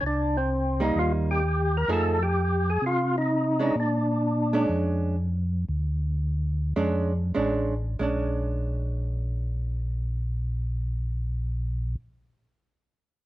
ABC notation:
X:1
M:4/4
L:1/8
Q:"Swing" 1/4=117
K:Bbmix
V:1 name="Tonewheel organ"
D C2 E F G2 B | =A G2 ^G F E2 E | D4 z4 | z8 |
z8 | z8 |]
V:2 name="Hollow-body jazz guitar"
z3 [G,B,E]3 z2 | [F,=A,E^G] z6 [^G,_D=D] | z3 [A,^CD]3 z2 | z4 [A,^CD] z [A,CD] z |
[A,^CD]8- | [A,^CD]8 |]
V:3 name="Tonewheel organ" clef=bass
C,,4 E,,4 | F,,4 C,4 | B,,4 F,,4 | D,,4 F,,2 =A,,,2 |
B,,,8- | B,,,8 |]